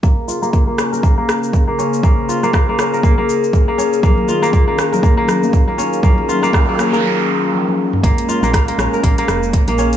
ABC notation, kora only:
X:1
M:4/4
L:1/16
Q:"Swing 16ths" 1/4=120
K:Bbm
V:1 name="Kora"
B, z F B, B, B, D B B, B, z3 B, D z | B, z F B, B, B, D B B, B, z3 B, D z | B, z F B, B, B, D B B, B, z3 B, D z | B, z F B, B, B, D B z8 |
B, z F B, B, B, D B B, B, z3 B, D z |]